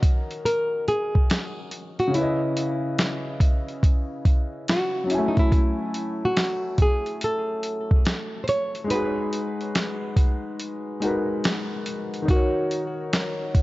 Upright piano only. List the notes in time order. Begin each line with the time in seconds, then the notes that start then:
Already playing: D#3 C#4 F#4 A#4 D#5
2.08 C#3 C#4
2.15 E4 B4
2.22 D#5
5.04 F#3 C#4
5.11 E4 G#5
5.18 A3
8.84 G#3 D#4
8.91 F#4 G#4
8.99 B4
11.00 G#3 D#4 F#4
11.05 A#4 B4
12.22 D#3 D#4
12.29 F#4 A#4
12.36 C#5